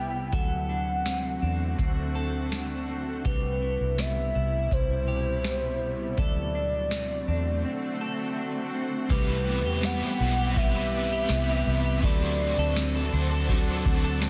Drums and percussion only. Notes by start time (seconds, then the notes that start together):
0.33 kick, closed hi-hat
1.06 snare, closed hi-hat
1.79 kick, closed hi-hat
2.52 snare, closed hi-hat
3.25 kick, closed hi-hat
3.98 snare, closed hi-hat
4.71 kick, closed hi-hat
5.44 snare, closed hi-hat
6.18 kick, closed hi-hat
6.91 snare, closed hi-hat
9.10 kick, ride
9.83 snare, ride, tambourine
10.56 kick, ride
11.29 snare, ride, tambourine
12.03 kick, ride
12.76 snare, ride, tambourine
13.49 kick, ride
13.86 kick
14.22 snare, ride, tambourine